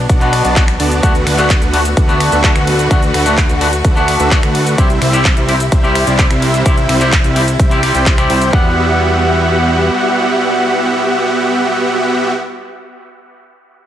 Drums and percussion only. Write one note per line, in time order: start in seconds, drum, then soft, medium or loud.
0.09 kick loud
0.09 closed hi-hat medium
0.09 shaker medium
0.21 closed hi-hat soft
0.21 shaker soft
0.33 finger snap medium
0.33 open hi-hat loud
0.33 ride medium
0.45 closed hi-hat medium
0.45 shaker medium
0.56 kick loud
0.56 clap loud
0.56 closed hi-hat medium
0.56 shaker medium
0.68 finger snap medium
0.68 closed hi-hat soft
0.68 shaker soft
0.80 open hi-hat loud
0.80 ride medium
0.92 closed hi-hat medium
0.92 shaker medium
1.03 kick loud
1.03 closed hi-hat medium
1.03 shaker medium
1.15 closed hi-hat soft
1.15 shaker soft
1.27 finger snap medium
1.27 open hi-hat loud
1.27 ride medium
1.38 clap soft
1.38 closed hi-hat soft
1.38 shaker medium
1.50 kick loud
1.50 clap loud
1.50 closed hi-hat medium
1.50 shaker medium
1.62 closed hi-hat soft
1.62 shaker soft
1.74 open hi-hat loud
1.74 ride medium
1.85 closed hi-hat medium
1.85 shaker medium
1.97 kick loud
1.97 closed hi-hat medium
1.97 shaker medium
2.09 shaker soft
2.20 finger snap medium
2.20 open hi-hat loud
2.20 ride medium
2.32 closed hi-hat medium
2.32 shaker medium
2.44 kick loud
2.44 clap loud
2.44 closed hi-hat medium
2.44 shaker medium
2.56 finger snap medium
2.56 closed hi-hat soft
2.56 shaker soft
2.67 open hi-hat loud
2.67 ride medium
2.79 closed hi-hat medium
2.79 shaker medium
2.91 kick loud
2.91 closed hi-hat medium
2.91 shaker medium
3.03 closed hi-hat soft
3.03 shaker soft
3.14 finger snap medium
3.14 open hi-hat loud
3.14 ride medium
3.26 closed hi-hat medium
3.26 shaker medium
3.37 kick loud
3.37 clap loud
3.37 closed hi-hat medium
3.37 shaker medium
3.49 closed hi-hat soft
3.49 shaker soft
3.61 open hi-hat loud
3.61 ride medium
3.73 closed hi-hat medium
3.73 shaker medium
3.85 kick loud
3.85 closed hi-hat medium
3.85 shaker medium
3.96 shaker soft
4.08 finger snap medium
4.08 open hi-hat loud
4.08 ride medium
4.20 closed hi-hat medium
4.20 shaker medium
4.31 kick loud
4.31 clap loud
4.31 closed hi-hat medium
4.31 shaker medium
4.43 finger snap medium
4.43 closed hi-hat soft
4.43 shaker soft
4.55 open hi-hat loud
4.55 ride medium
4.67 closed hi-hat medium
4.67 shaker medium
4.78 kick loud
4.78 closed hi-hat medium
4.78 shaker medium
4.90 closed hi-hat soft
4.90 shaker soft
5.02 finger snap medium
5.02 open hi-hat loud
5.02 ride medium
5.13 clap soft
5.13 closed hi-hat medium
5.13 shaker medium
5.25 kick loud
5.25 clap loud
5.25 closed hi-hat medium
5.25 shaker medium
5.37 closed hi-hat soft
5.37 shaker soft
5.49 open hi-hat loud
5.49 ride medium
5.60 closed hi-hat medium
5.60 shaker medium
5.72 kick loud
5.72 closed hi-hat medium
5.72 shaker medium
5.84 shaker soft
5.95 finger snap medium
5.95 open hi-hat loud
5.95 ride medium
6.07 closed hi-hat medium
6.07 shaker medium
6.19 kick loud
6.19 clap loud
6.19 closed hi-hat medium
6.19 shaker medium
6.31 finger snap medium
6.31 closed hi-hat soft
6.31 shaker soft
6.42 open hi-hat loud
6.42 ride medium
6.54 closed hi-hat medium
6.54 shaker medium
6.66 kick loud
6.66 closed hi-hat medium
6.66 shaker medium
6.77 closed hi-hat soft
6.77 shaker soft
6.89 finger snap medium
6.89 open hi-hat loud
6.89 ride medium
7.01 clap soft
7.01 closed hi-hat medium
7.01 shaker medium
7.12 kick loud
7.12 clap loud
7.12 closed hi-hat medium
7.12 shaker medium
7.24 closed hi-hat soft
7.24 shaker soft
7.36 open hi-hat loud
7.36 ride medium
7.48 closed hi-hat medium
7.48 shaker medium
7.60 kick loud
7.60 closed hi-hat medium
7.60 shaker medium
7.71 closed hi-hat soft
7.71 shaker soft
7.83 finger snap medium
7.83 open hi-hat loud
7.83 ride medium
7.95 closed hi-hat medium
7.95 shaker medium
8.06 kick loud
8.06 clap loud
8.06 closed hi-hat medium
8.06 shaker medium
8.18 finger snap medium
8.18 closed hi-hat soft
8.18 shaker soft
8.30 open hi-hat loud
8.30 ride medium
8.42 closed hi-hat medium
8.42 shaker medium
8.53 kick loud